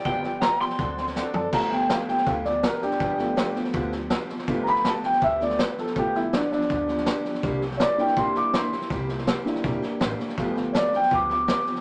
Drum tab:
CC |----------------|x---------------|----------------|----------------|
HH |----p-------p---|----p-------p---|----p-------p---|----p-------p---|
SD |o-o-o-ooo-ooo---|o-o-o-ooo-o-o-oo|o-o-o-ooo-o-o-oo|o-ooo-ooo-ooo-oo|
FT |--------------o-|----------------|----------------|----------------|
BD |o-------o-------|o-------o-------|o-------o-------|o-------o-------|

CC |----------------|----------------|----------------|----------------|
HH |----p-------p---|----p-------p---|----p-------p---|----p-------p---|
SD |o-o-o-ooo-ooo-oo|o-ooo-ooo-o-o-oo|o-ooo-ooo-o-o-oo|o-o-o-ooo-o-o-oo|
FT |----------------|----------------|----------------|----------------|
BD |o-------o-------|o-------o-------|o-------o-------|o-------o-------|